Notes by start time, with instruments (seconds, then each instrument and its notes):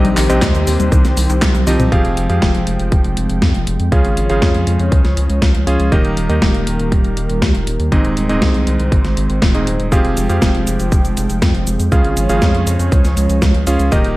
Already playing: electric grand piano C3 C4 D#4 G4 D#5, analog synth pad D#3 G3 C4 G4 C5
0.05 analog synth bass A#1, synth arpeggio sound G3, closed hi-hat
0.17 analog synth bass A#1, synth arpeggio sound D#3, clap, open hi-hat, cabasa
0.29 analog synth bass A#1, electric grand piano C3 C4 D#4 G4 D#5, synth arpeggio sound C4, closed hi-hat, cabasa
0.42 analog synth bass D#2, synth arpeggio sound G3, kick, snare, clap, closed hi-hat, cabasa
0.55 analog synth bass D#2, synth arpeggio sound D#3, closed hi-hat, cabasa
0.67 analog synth bass D#2, synth arpeggio sound D#3, open hi-hat, cabasa
0.80 analog synth bass D#2, synth arpeggio sound G3, closed hi-hat, cabasa
0.92 analog synth bass C2, synth arpeggio sound D#3, kick, closed hi-hat, cabasa
1.05 analog synth bass C2, synth arpeggio sound C4, snare, closed hi-hat, cabasa
1.17 analog synth bass C2, synth arpeggio sound G3, open hi-hat, cabasa
1.29 analog synth bass C2, synth arpeggio sound D#3, closed hi-hat, cabasa
1.42 analog synth bass C2, synth arpeggio sound C4, kick, snare, clap, closed hi-hat, high tom, cabasa
1.55 analog synth bass C2, synth arpeggio sound G3, closed hi-hat, high tom, cabasa
1.67 analog synth bass C2, synth arpeggio sound D#3, electric grand piano F3 C4 D#4 G4 D#5, open hi-hat, cabasa
1.79 analog synth bass C2, synth arpeggio sound C4, closed hi-hat, mid tom, cabasa
1.92 analog synth bass F1, electric grand piano F3 C4 G4 G#4 F5, analog synth pad F3 G#3 C4 G5, kick, closed hi-hat
2.05 analog synth bass F1, closed hi-hat
2.17 analog synth bass F1, closed hi-hat
2.29 analog synth bass F2, electric grand piano F3 C4 G4 G#4 F5, closed hi-hat
2.42 analog synth bass F1, kick, snare, closed hi-hat
2.55 analog synth bass F1, closed hi-hat
2.67 analog synth bass F1, closed hi-hat
2.79 analog synth bass F1, closed hi-hat
2.92 analog synth bass F1, kick, closed hi-hat
3.05 analog synth bass F1, closed hi-hat
3.17 analog synth bass F1, closed hi-hat
3.30 analog synth bass F1, closed hi-hat
3.42 analog synth bass F2, kick, snare, closed hi-hat
3.55 analog synth bass F1, closed hi-hat
3.67 analog synth bass F1, closed hi-hat
3.80 analog synth bass F2, closed hi-hat
3.92 analog synth bass C#2, electric grand piano C#3 C#4 F4 G#4 F5, analog synth pad F3 C#4 C#5, kick, closed hi-hat
4.05 analog synth bass G#1, closed hi-hat
4.17 analog synth bass G#1, closed hi-hat
4.30 analog synth bass G#1, electric grand piano C#3 C#4 F4 G#4 F5, closed hi-hat
4.42 analog synth bass F2, kick, snare, closed hi-hat
4.55 analog synth bass F2, closed hi-hat
4.67 analog synth bass F2, closed hi-hat
4.80 analog synth bass F2, closed hi-hat
4.92 analog synth bass C#2, kick, closed hi-hat
5.05 analog synth bass C#2, snare, closed hi-hat
5.17 analog synth bass C#2, closed hi-hat
5.30 analog synth bass C#2, closed hi-hat
5.42 analog synth bass C#2, kick, snare, closed hi-hat
5.55 analog synth bass C#2, closed hi-hat
5.67 analog synth bass C#2, electric grand piano C#4 F4 G#4 F5, closed hi-hat
5.80 analog synth bass C#2, closed hi-hat
5.92 analog synth bass D#1, analog synth pad D#3 G3 A#3 G4 A#4, electric grand piano D#3 A#3 D#4 G4 D#5, kick, closed hi-hat
6.04 analog synth bass D#1, closed hi-hat
6.17 analog synth bass D#1, closed hi-hat
6.29 analog synth bass D#2, electric grand piano D#3 A#3 D#4 G4 D#5, closed hi-hat
6.42 analog synth bass D#1, kick, snare, closed hi-hat
6.54 analog synth bass D#1, closed hi-hat
6.67 analog synth bass D#1, closed hi-hat
6.79 analog synth bass D#1, closed hi-hat
6.92 analog synth bass D#1, kick, closed hi-hat
7.04 analog synth bass D#1, closed hi-hat
7.17 analog synth bass D#1, closed hi-hat
7.30 analog synth bass D#1, closed hi-hat
7.42 analog synth bass D#2, kick, snare, closed hi-hat
7.55 analog synth bass D#1, closed hi-hat
7.67 analog synth bass D#1, closed hi-hat
7.80 analog synth bass D#2, closed hi-hat
7.92 analog synth bass G#1, electric grand piano G#2 C4 D#4 G#4 D#5, analog synth pad G#3 C4 C5, kick, closed hi-hat
8.05 analog synth bass D#1, closed hi-hat
8.17 analog synth bass D#1, closed hi-hat
8.29 analog synth bass D#1, electric grand piano G#2 C4 D#4 G#4 D#5, closed hi-hat
8.42 analog synth bass C2, kick, snare, closed hi-hat
8.54 analog synth bass C2, closed hi-hat
8.67 analog synth bass C2, closed hi-hat
8.80 analog synth bass C2, closed hi-hat
8.92 analog synth bass G#1, kick, closed hi-hat
9.05 analog synth bass G#1, snare, closed hi-hat
9.17 analog synth bass G#1, closed hi-hat
9.29 analog synth bass G#1, closed hi-hat
9.42 analog synth bass D#1, kick, snare, closed hi-hat
9.54 analog synth bass D#1, electric grand piano G#2 C4 D#4 G#4 D#5, closed hi-hat
9.67 analog synth bass D#1, closed hi-hat
9.79 analog synth bass D#1, closed hi-hat
9.92 analog synth bass F1, electric grand piano F3 C4 G4 G#4 F5, analog synth pad F3 G5, kick, closed hi-hat, cabasa
10.04 analog synth bass F1, closed hi-hat
10.17 analog synth bass F1, closed hi-hat, cabasa
10.29 analog synth bass F2, electric grand piano F3 C4 G4 G#4 F5, closed hi-hat, cabasa
10.42 analog synth bass F1, kick, snare, closed hi-hat, cabasa
10.54 analog synth bass F1, closed hi-hat
10.67 analog synth bass F1, closed hi-hat, cabasa
10.79 analog synth bass F1, closed hi-hat, cabasa
10.92 analog synth bass F1, kick, closed hi-hat, cabasa
11.04 analog synth bass F1, closed hi-hat, cabasa
11.17 analog synth bass F1, closed hi-hat, cabasa
11.29 analog synth bass F1, closed hi-hat, cabasa
11.42 analog synth bass F2, kick, snare, closed hi-hat, cabasa
11.54 analog synth bass F1, closed hi-hat
11.67 analog synth bass F1, closed hi-hat, cabasa
11.79 analog synth bass F2, closed hi-hat, cabasa
11.92 analog synth bass C#2, electric grand piano C#3 C#4 F4 G#4 F5, analog synth pad F3 C#4 C#5, kick, closed hi-hat, cabasa
12.04 analog synth bass G#1, closed hi-hat
12.17 analog synth bass G#1, closed hi-hat, cabasa
12.29 analog synth bass G#1, electric grand piano C#3 C#4 F4 G#4 F5, closed hi-hat, cabasa
12.42 analog synth bass F2, kick, snare, closed hi-hat, cabasa
12.54 analog synth bass F2, closed hi-hat
12.67 analog synth bass F2, closed hi-hat, cabasa
12.79 analog synth bass F2, closed hi-hat, cabasa
12.92 analog synth bass C#2, kick, closed hi-hat, cabasa
13.04 analog synth bass C#2, snare, closed hi-hat, cabasa
13.17 analog synth bass C#2, closed hi-hat, cabasa
13.29 analog synth bass C#2, closed hi-hat, cabasa
13.42 analog synth bass C#2, kick, snare, closed hi-hat, cabasa
13.54 analog synth bass C#2, closed hi-hat
13.67 analog synth bass C#2, electric grand piano C#4 F4 G#4 F5, closed hi-hat, cabasa
13.79 analog synth bass C#2, closed hi-hat, cabasa
13.92 analog synth bass D#1, electric grand piano D#3 A#3 D#4 G4 D#5, analog synth pad D#3 G3 A#3 G4 A#4, kick, closed hi-hat, cabasa
14.04 analog synth bass D#1, closed hi-hat